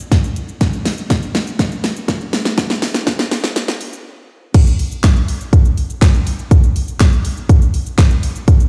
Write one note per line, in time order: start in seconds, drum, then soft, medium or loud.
0.00 shaker medium
0.12 kick loud
0.12 snare medium
0.12 closed hi-hat medium
0.12 shaker medium
0.24 shaker medium
0.36 closed hi-hat medium
0.36 shaker medium
0.49 shaker medium
0.61 kick loud
0.61 snare medium
0.61 closed hi-hat medium
0.61 shaker medium
0.73 shaker medium
0.85 snare medium
0.85 open hi-hat medium
0.85 shaker medium
0.98 shaker medium
1.10 kick loud
1.10 snare medium
1.10 closed hi-hat medium
1.10 shaker medium
1.22 shaker medium
1.35 snare medium
1.35 open hi-hat medium
1.35 shaker medium
1.47 shaker medium
1.59 kick loud
1.59 snare medium
1.59 closed hi-hat medium
1.59 shaker medium
1.72 shaker soft
1.84 snare medium
1.84 open hi-hat medium
1.84 shaker soft
1.96 shaker medium
2.08 kick loud
2.08 snare loud
2.08 closed hi-hat medium
2.08 shaker medium
2.21 shaker medium
2.33 snare loud
2.33 open hi-hat medium
2.33 shaker medium
2.45 snare loud
2.45 shaker medium
2.58 kick loud
2.58 snare loud
2.58 closed hi-hat medium
2.58 shaker medium
2.70 snare loud
2.70 shaker medium
2.82 snare loud
2.82 open hi-hat medium
2.82 shaker medium
2.94 snare loud
2.94 shaker medium
3.07 kick loud
3.07 snare loud
3.07 closed hi-hat medium
3.07 shaker medium
3.19 snare loud
3.19 shaker medium
3.31 snare loud
3.31 open hi-hat medium
3.31 shaker medium
3.44 snare loud
3.44 shaker medium
3.56 snare loud
3.56 closed hi-hat medium
3.56 shaker medium
3.68 snare loud
3.68 shaker soft
3.81 open hi-hat medium
3.81 shaker soft
3.93 shaker medium
4.54 kick loud
4.54 closed hi-hat medium
4.54 crash loud
4.54 shaker medium
4.67 shaker medium
4.79 open hi-hat medium
4.79 shaker medium
4.91 shaker medium
5.04 kick loud
5.04 snare medium
5.04 clap loud
5.04 closed hi-hat medium
5.04 shaker medium
5.16 shaker medium
5.28 open hi-hat medium
5.28 shaker medium
5.41 shaker medium
5.53 kick loud
5.53 closed hi-hat medium
5.53 shaker medium
5.65 shaker soft
5.78 open hi-hat medium
5.78 shaker medium
5.90 shaker medium
6.02 kick loud
6.02 snare medium
6.02 clap loud
6.02 closed hi-hat medium
6.02 shaker medium
6.14 shaker medium
6.27 open hi-hat medium
6.27 shaker medium
6.39 shaker medium
6.51 kick loud
6.51 closed hi-hat medium
6.51 shaker medium
6.63 shaker medium
6.76 open hi-hat medium
6.76 shaker medium
6.88 shaker medium
7.00 kick loud
7.00 snare medium
7.00 clap loud
7.00 closed hi-hat medium
7.00 shaker medium
7.12 shaker medium
7.25 open hi-hat medium
7.25 shaker medium
7.37 shaker medium
7.49 kick loud
7.49 closed hi-hat medium
7.49 shaker medium
7.62 shaker soft
7.74 open hi-hat medium
7.74 shaker medium
7.86 shaker medium
7.98 kick loud
7.98 snare medium
7.98 clap loud
7.98 closed hi-hat medium
7.98 shaker medium
8.11 shaker medium
8.23 open hi-hat medium
8.23 shaker medium
8.35 shaker medium
8.48 kick loud
8.48 closed hi-hat medium
8.48 shaker medium
8.60 shaker medium